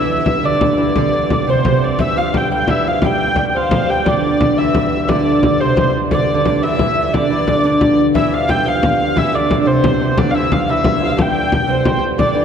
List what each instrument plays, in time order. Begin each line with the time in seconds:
Already playing: harmonium G2 D3, lute E3, recorder E5, hurdy-gurdy E5
0.26 frame drum
0.43 lute D3, hurdy-gurdy D5, recorder E5
0.47 recorder D5
0.61 frame drum
0.77 lute E3, frame drum
0.96 lute D3, recorder D5, hurdy-gurdy D5, frame drum
1.13 lute E3
1.30 lute D3, recorder D5, hurdy-gurdy D5, frame drum
1.47 lute C3, recorder C5, hurdy-gurdy C5
1.65 lute C3, frame drum
1.82 hurdy-gurdy D5, frame drum
1.99 lute E3, recorder E5, hurdy-gurdy E5, frame drum
2.16 lute F3, recorder F5, hurdy-gurdy F5
2.33 lute G3, recorder G5, hurdy-gurdy G5, frame drum
2.50 lute G3, recorder G5, hurdy-gurdy G5
2.62 recorder F5
2.68 lute E3, recorder E5, hurdy-gurdy E5, frame drum
2.85 lute F3, hurdy-gurdy F5, frame drum
3.02 lute G3, recorder G5, frame drum
3.06 hurdy-gurdy G5
3.19 frame drum
3.36 lute G3, frame drum
3.49 hurdy-gurdy G5
3.53 lute F3, hurdy-gurdy C5 F5, recorder F5 G5, frame drum
3.71 lute F3, frame drum
3.89 lute G3, recorder G5, hurdy-gurdy G5
4.05 harmonium G2 D3, lute D3, hurdy-gurdy D5, recorder D5, frame drum
4.23 frame drum
4.41 recorder D5, frame drum
4.58 lute E3, recorder E5, hurdy-gurdy E5, frame drum
4.75 frame drum
4.92 frame drum
5.04 hurdy-gurdy E5
5.08 lute D3, recorder D5, hurdy-gurdy D5, frame drum
5.26 frame drum
5.42 lute D3, frame drum
5.60 lute C3, hurdy-gurdy C5, recorder C5, frame drum
5.76 lute C3, frame drum
5.95 frame drum
6.11 lute D3, recorder D5, hurdy-gurdy D5, frame drum
6.22 lute D3
6.29 frame drum
6.34 lute D3
6.45 lute D3, hurdy-gurdy D5, recorder D5, frame drum
6.62 lute E3, hurdy-gurdy E5, recorder E5, frame drum
6.79 frame drum
6.96 frame drum
7.14 lute D3, hurdy-gurdy D5, recorder D5, frame drum
7.30 lute E3
7.47 lute D3, hurdy-gurdy D5, frame drum
7.63 lute D3, recorder D5, hurdy-gurdy D5
7.81 frame drum
7.99 frame drum
8.14 harmonium G2 D3, lute E3, recorder E5, hurdy-gurdy E5, frame drum
8.33 lute F3, hurdy-gurdy F5, frame drum
8.48 lute G3, recorder G5, hurdy-gurdy G5, frame drum
8.66 lute F3, recorder F5, hurdy-gurdy F5, frame drum
8.83 frame drum
8.99 frame drum
9.16 lute E3, recorder E5, hurdy-gurdy E5, frame drum
9.33 lute D3, recorder D5, hurdy-gurdy D5, frame drum
9.51 lute D3, frame drum
9.61 hurdy-gurdy D5
9.66 lute C3, hurdy-gurdy C5, recorder C5, frame drum
9.84 frame drum
10.00 lute C3, hurdy-gurdy C5, frame drum
10.17 lute D3, recorder D5, hurdy-gurdy D5, frame drum
10.31 lute E3, hurdy-gurdy E5 F5, frame drum
10.52 lute F3, hurdy-gurdy F5, frame drum
10.68 lute E3, recorder E5, hurdy-gurdy E5, frame drum
10.84 lute E3, frame drum
11.01 lute F3, recorder F5, hurdy-gurdy F5, frame drum
11.05 lute F3, hurdy-gurdy E5, recorder F5
11.12 hurdy-gurdy F5
11.17 lute G3, hurdy-gurdy G5, recorder A5, frame drum
11.22 recorder G5
11.52 frame drum
11.67 lute C3, recorder C5, hurdy-gurdy C5, frame drum
11.85 frame drum
12.03 frame drum
12.18 harmonium G2 D3, lute D3, recorder D5, hurdy-gurdy D5, frame drum
12.35 lute E3, frame drum